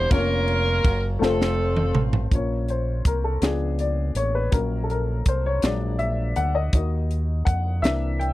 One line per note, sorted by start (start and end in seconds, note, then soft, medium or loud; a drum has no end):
0.09 0.81 F1 loud
0.09 1.21 A#3 medium
0.09 1.21 C#4 medium
0.09 1.06 C#4 medium
0.09 1.20 F4 medium
0.09 1.06 F4 medium
0.09 1.06 A#4 loud
0.09 1.22 A#4 medium
0.09 kick loud
0.09 ride medium
0.13 1.23 C#5 medium
0.48 ride soft
0.84 1.19 F#1 medium
0.84 kick loud
0.84 ride medium
1.19 1.91 F1 loud
1.19 2.31 A3 medium
1.19 2.31 C4 medium
1.19 2.32 F4 medium
1.19 2.32 A4 medium
1.19 snare medium
1.23 2.29 C4 medium
1.23 2.29 F4 medium
1.23 2.01 A4 medium
1.23 2.33 C5 medium
1.41 snare medium
1.76 mid tom medium
1.95 2.29 A1 medium
1.95 mid tom medium
2.13 floor tom medium
2.31 3.01 A#1 medium
2.31 2.81 F3 soft
2.31 2.81 A#3 soft
2.31 2.81 C#4 medium
2.31 2.71 C#5 medium
2.31 kick medium
2.31 closed hi-hat medium
2.69 3.07 C5 medium
2.69 closed hi-hat soft
3.05 3.40 C2 medium
3.05 3.25 A#4 medium
3.05 kick medium
3.05 closed hi-hat medium
3.24 3.43 A4 medium
3.41 4.12 C#2 medium
3.41 3.91 F3 soft
3.41 3.91 B3 soft
3.41 3.91 D4 medium
3.41 3.81 G#4 medium
3.41 snare medium
3.41 closed hi-hat medium
3.79 4.14 D5 medium
3.79 closed hi-hat soft
4.15 4.49 A1 medium
4.15 4.35 C#5 medium
4.15 closed hi-hat soft
4.35 4.52 B4 medium
4.51 5.22 A#1 medium
4.51 5.01 F#3 soft
4.51 5.01 A#3 soft
4.51 5.01 C#4 medium
4.51 4.83 A#4 medium
4.51 kick medium
4.51 closed hi-hat medium
4.84 4.90 A4 medium
4.90 5.28 A#4 medium
4.90 closed hi-hat soft
5.26 5.60 C2 medium
5.26 5.44 C5 medium
5.26 kick medium
5.26 closed hi-hat medium
5.46 5.64 C#5 medium
5.62 6.32 A#1 medium
5.62 6.69 F#3 soft
5.62 6.69 G#3 medium
5.62 6.70 D4 medium
5.62 5.98 D5 medium
5.62 snare medium
5.62 closed hi-hat medium
5.99 6.37 E5 medium
5.99 closed hi-hat soft
6.36 6.70 D2 medium
6.36 6.53 F#5 medium
6.36 closed hi-hat medium
6.55 6.89 D#5 medium
6.73 7.43 D#2 loud
6.73 7.80 A#3 soft
6.73 7.80 D#4 medium
6.73 7.79 F#4 soft
6.73 kick medium
6.73 closed hi-hat medium
7.11 closed hi-hat soft
7.45 7.80 F2 medium
7.45 7.84 F#5 medium
7.45 kick medium
7.45 closed hi-hat medium
7.82 8.33 C2 loud
7.82 8.33 E3 medium
7.82 8.33 A#3 soft
7.82 8.33 D4 medium
7.82 8.17 E5 loud
7.82 snare medium
7.82 closed hi-hat medium
8.19 8.33 G5 medium
8.19 closed hi-hat soft